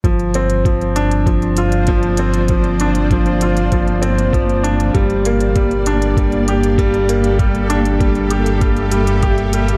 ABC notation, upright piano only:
X:1
M:4/4
L:1/8
Q:1/4=98
K:Bblyd
V:1 name="Upright piano" clef=bass
F, C F, D F, F F, C | F, D F, F F, C F, D | G, B, G, D G, G G, B, | G, D G, G G, G, G G, |]